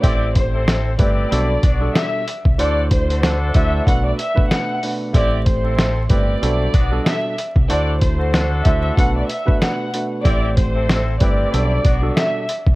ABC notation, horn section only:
X:1
M:4/4
L:1/16
Q:"Swing 16ths" 1/4=94
K:Ador
V:1 name="Horn section"
[CEG]2 z [CEA] [CEA]2 [CEG]2 [A,CE]2 [B,DF]3 z3 | [DFA]2 z [FAc] [DFA]6 z6 | [CEG]2 z [CEA] [CEA]2 [CEG]2 [A,CE]2 [B,DF]3 z3 | [DFA]2 z [FAc] [DFA]6 z6 |
[CEG]2 z [CEA] [CEA]2 [CEG]2 [A,CE]2 [B,DF]3 z3 |]